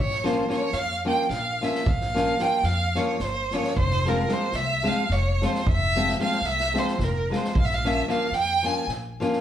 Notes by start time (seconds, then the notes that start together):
Already playing: A#1
0.00 C#5
0.11 snare
0.24 F3 A#3 C#4 F4 C5, snare
0.48 F3 A#3 C#4 F4 C#5, snare
0.72 F2 F5, snare
1.05 F3 A#3 C#4 F4 G5
1.30 A#1 F5, snare
1.61 F3 A#3 C#4 F4 E5, snare
1.75 snare
1.86 A#1 F5, kick
2.01 snare
2.14 F3 A#3 C#4 F4, snare
2.39 F3 A#3 C#4 F4 G5, snare
2.63 F2 F5, snare
2.95 F3 A#3 C#4 F4 C#5, snare
3.19 G1 C5, snare
3.51 F3 A#3 C#4 F4 C#5, snare
3.64 snare
3.77 F1 C5, kick
3.90 snare
4.05 F3 G#3 C4 F4 A#4, snare
4.28 F3 G#3 C4 F4, snare
4.32 C5
4.52 C2 E5, snare
4.83 F3 G#3 C4 F4, snare
4.88 F5
5.10 F1 C#5, snare
5.42 F3 G#3 C4 F4 C5, snare
5.55 snare
5.66 F1, kick
5.70 E5
5.96 F3 G#3 C4 F4
6.08 snare
6.19 F3 G#3 C4 F4 F5, snare
6.32 snare
6.42 C2 E5, snare
6.60 snare
6.74 F3 G#3 C4 F4, snare
6.78 C5
6.88 snare
6.99 F1, kick, snare
7.03 A#4
7.30 F3 G#3 C4 F4, snare
7.36 C5
7.44 snare
7.55 A#1, kick
7.59 F5
7.65 E5
7.70 F5, snare
7.84 F3 A#3 C#4 F4 E5, snare
8.08 F3 A#3 C#4 F4 F5, snare
8.31 F2 G5, snare
8.63 F3 A#3 C#4 F4 G#5, snare
8.87 A#1, snare
9.20 F3 A#3 C#4 F4, snare
9.33 snare